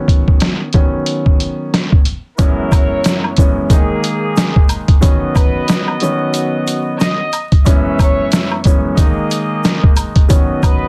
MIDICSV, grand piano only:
0, 0, Header, 1, 2, 480
1, 0, Start_track
1, 0, Tempo, 659341
1, 1738, Time_signature, 4, 2, 24, 8
1, 7922, End_track
2, 0, Start_track
2, 0, Title_t, "Grand piano"
2, 0, Program_c, 0, 0
2, 0, Note_on_c, 0, 51, 93
2, 0, Note_on_c, 0, 54, 81
2, 0, Note_on_c, 0, 59, 88
2, 0, Note_on_c, 0, 61, 105
2, 485, Note_off_c, 0, 51, 0
2, 487, Note_off_c, 0, 54, 0
2, 488, Note_off_c, 0, 59, 0
2, 490, Note_off_c, 0, 61, 0
2, 538, Note_on_c, 0, 51, 88
2, 541, Note_on_c, 0, 54, 86
2, 544, Note_on_c, 0, 59, 84
2, 548, Note_on_c, 0, 61, 102
2, 1436, Note_off_c, 0, 51, 0
2, 1437, Note_off_c, 0, 54, 0
2, 1439, Note_off_c, 0, 59, 0
2, 1440, Note_off_c, 0, 61, 0
2, 1734, Note_on_c, 0, 42, 88
2, 1736, Note_on_c, 0, 52, 84
2, 1739, Note_on_c, 0, 56, 84
2, 1741, Note_on_c, 0, 59, 85
2, 1743, Note_on_c, 0, 61, 109
2, 2409, Note_off_c, 0, 42, 0
2, 2410, Note_off_c, 0, 52, 0
2, 2412, Note_off_c, 0, 56, 0
2, 2413, Note_off_c, 0, 59, 0
2, 2414, Note_off_c, 0, 61, 0
2, 2457, Note_on_c, 0, 42, 87
2, 2459, Note_on_c, 0, 52, 85
2, 2462, Note_on_c, 0, 56, 80
2, 2464, Note_on_c, 0, 59, 88
2, 2467, Note_on_c, 0, 61, 107
2, 2681, Note_off_c, 0, 56, 0
2, 2689, Note_on_c, 0, 51, 96
2, 2692, Note_on_c, 0, 56, 90
2, 2696, Note_on_c, 0, 58, 85
2, 2698, Note_off_c, 0, 42, 0
2, 2698, Note_on_c, 0, 63, 104
2, 2699, Note_off_c, 0, 52, 0
2, 2701, Note_off_c, 0, 59, 0
2, 2702, Note_off_c, 0, 61, 0
2, 3591, Note_off_c, 0, 51, 0
2, 3593, Note_off_c, 0, 56, 0
2, 3594, Note_off_c, 0, 58, 0
2, 3596, Note_off_c, 0, 63, 0
2, 3645, Note_on_c, 0, 51, 91
2, 3648, Note_on_c, 0, 54, 85
2, 3651, Note_on_c, 0, 59, 90
2, 3655, Note_on_c, 0, 61, 105
2, 4325, Note_off_c, 0, 51, 0
2, 4326, Note_off_c, 0, 54, 0
2, 4328, Note_off_c, 0, 59, 0
2, 4330, Note_off_c, 0, 61, 0
2, 4377, Note_on_c, 0, 51, 85
2, 4380, Note_on_c, 0, 54, 89
2, 4384, Note_on_c, 0, 59, 91
2, 4387, Note_on_c, 0, 61, 97
2, 5275, Note_off_c, 0, 51, 0
2, 5277, Note_off_c, 0, 54, 0
2, 5278, Note_off_c, 0, 59, 0
2, 5280, Note_off_c, 0, 61, 0
2, 5573, Note_on_c, 0, 42, 91
2, 5576, Note_on_c, 0, 52, 89
2, 5578, Note_on_c, 0, 56, 86
2, 5580, Note_on_c, 0, 59, 86
2, 5583, Note_on_c, 0, 61, 114
2, 6249, Note_off_c, 0, 42, 0
2, 6250, Note_off_c, 0, 52, 0
2, 6251, Note_off_c, 0, 56, 0
2, 6252, Note_off_c, 0, 59, 0
2, 6254, Note_off_c, 0, 61, 0
2, 6297, Note_on_c, 0, 42, 86
2, 6299, Note_on_c, 0, 52, 87
2, 6302, Note_on_c, 0, 56, 85
2, 6304, Note_on_c, 0, 59, 87
2, 6306, Note_on_c, 0, 61, 104
2, 6520, Note_off_c, 0, 56, 0
2, 6528, Note_on_c, 0, 51, 95
2, 6531, Note_on_c, 0, 56, 92
2, 6534, Note_on_c, 0, 58, 87
2, 6538, Note_off_c, 0, 42, 0
2, 6538, Note_on_c, 0, 63, 109
2, 6539, Note_off_c, 0, 52, 0
2, 6541, Note_off_c, 0, 59, 0
2, 6542, Note_off_c, 0, 61, 0
2, 7431, Note_off_c, 0, 51, 0
2, 7432, Note_off_c, 0, 56, 0
2, 7434, Note_off_c, 0, 58, 0
2, 7436, Note_off_c, 0, 63, 0
2, 7484, Note_on_c, 0, 51, 94
2, 7488, Note_on_c, 0, 54, 85
2, 7491, Note_on_c, 0, 59, 89
2, 7494, Note_on_c, 0, 61, 102
2, 7922, Note_off_c, 0, 51, 0
2, 7922, Note_off_c, 0, 54, 0
2, 7922, Note_off_c, 0, 59, 0
2, 7922, Note_off_c, 0, 61, 0
2, 7922, End_track
0, 0, End_of_file